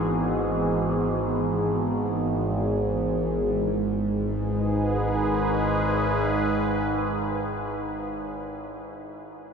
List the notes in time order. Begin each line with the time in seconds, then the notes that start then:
Already playing: G#1 G#2 E3 B3 E4 F#4 G#4
3.55 G#1 G#2 G#3
3.75 D#4
3.95 G#4
4.14 B4